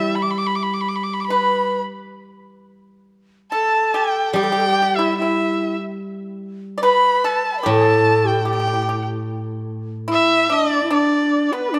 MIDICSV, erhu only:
0, 0, Header, 1, 2, 480
1, 0, Start_track
1, 0, Tempo, 837989
1, 1537, Time_signature, 4, 2, 24, 8
1, 2971, Tempo, 819672
1, 6840, End_track
2, 0, Start_track
2, 0, Title_t, "Erhu"
2, 0, Program_c, 0, 110
2, 0, Note_on_c, 0, 76, 84
2, 87, Note_on_c, 0, 83, 72
2, 96, Note_off_c, 0, 76, 0
2, 127, Note_on_c, 0, 86, 73
2, 135, Note_off_c, 0, 83, 0
2, 174, Note_on_c, 0, 83, 71
2, 183, Note_off_c, 0, 86, 0
2, 218, Note_on_c, 0, 86, 85
2, 227, Note_off_c, 0, 83, 0
2, 266, Note_on_c, 0, 83, 76
2, 274, Note_off_c, 0, 86, 0
2, 318, Note_on_c, 0, 86, 70
2, 327, Note_off_c, 0, 83, 0
2, 359, Note_on_c, 0, 83, 71
2, 368, Note_off_c, 0, 86, 0
2, 421, Note_on_c, 0, 86, 74
2, 430, Note_off_c, 0, 83, 0
2, 463, Note_on_c, 0, 83, 70
2, 472, Note_off_c, 0, 86, 0
2, 507, Note_on_c, 0, 86, 71
2, 515, Note_off_c, 0, 83, 0
2, 549, Note_on_c, 0, 83, 72
2, 558, Note_off_c, 0, 86, 0
2, 593, Note_on_c, 0, 86, 76
2, 602, Note_off_c, 0, 83, 0
2, 652, Note_on_c, 0, 83, 67
2, 660, Note_off_c, 0, 86, 0
2, 688, Note_on_c, 0, 86, 71
2, 696, Note_off_c, 0, 83, 0
2, 712, Note_on_c, 0, 83, 89
2, 720, Note_off_c, 0, 86, 0
2, 1038, Note_off_c, 0, 83, 0
2, 2013, Note_on_c, 0, 81, 90
2, 2262, Note_on_c, 0, 79, 88
2, 2271, Note_off_c, 0, 81, 0
2, 2488, Note_off_c, 0, 79, 0
2, 2491, Note_on_c, 0, 79, 99
2, 2839, Note_on_c, 0, 76, 82
2, 2847, Note_off_c, 0, 79, 0
2, 2965, Note_off_c, 0, 76, 0
2, 2969, Note_on_c, 0, 76, 75
2, 3310, Note_off_c, 0, 76, 0
2, 3936, Note_on_c, 0, 83, 93
2, 4179, Note_on_c, 0, 81, 87
2, 4188, Note_off_c, 0, 83, 0
2, 4377, Note_off_c, 0, 81, 0
2, 4385, Note_on_c, 0, 83, 70
2, 4428, Note_on_c, 0, 81, 96
2, 4437, Note_off_c, 0, 83, 0
2, 4783, Note_on_c, 0, 79, 79
2, 4792, Note_off_c, 0, 81, 0
2, 4895, Note_off_c, 0, 79, 0
2, 4913, Note_on_c, 0, 79, 85
2, 5233, Note_off_c, 0, 79, 0
2, 5861, Note_on_c, 0, 76, 106
2, 6097, Note_on_c, 0, 74, 92
2, 6106, Note_off_c, 0, 76, 0
2, 6332, Note_off_c, 0, 74, 0
2, 6335, Note_on_c, 0, 74, 85
2, 6659, Note_off_c, 0, 74, 0
2, 6659, Note_on_c, 0, 74, 55
2, 6688, Note_on_c, 0, 71, 80
2, 6697, Note_off_c, 0, 74, 0
2, 6809, Note_on_c, 0, 74, 92
2, 6818, Note_off_c, 0, 71, 0
2, 6840, Note_off_c, 0, 74, 0
2, 6840, End_track
0, 0, End_of_file